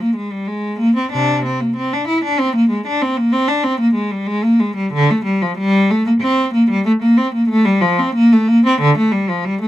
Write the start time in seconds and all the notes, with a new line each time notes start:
0.02 A#3
0.16 G#3
0.32 G3
0.48 G#3
0.79 A#3
0.97 C4
1.13 C3 D4
1.45 C4
1.61 A#3
1.76 C4
1.93 D4
2.08 E4
2.24 D4
2.40 C4
2.56 A#3
2.70 G#3
2.87 D4
3.02 C4
3.17 A#3
3.33 C4
3.48 D4
3.64 C4
3.80 A#3
3.94 G#3
4.11 G3
4.27 G#3
4.44 A#3
4.60 G#3
4.76 G3
4.93 D3
5.11 A3
5.25 G3
5.42 F3
5.58 G3
5.90 A3
6.06 A#3
6.21 C4
6.54 A#3
6.70 G3
6.86 A3
7.02 A#3
7.18 C4
7.35 A#3
7.49 A3
7.65 G3
7.81 F3
7.99 C4
8.15 A#3
8.33 A3
8.48 A#3
8.66 C4
8.81 D3
8.98 A3
9.12 G3
9.29 F3
9.45 G3
9.62 A3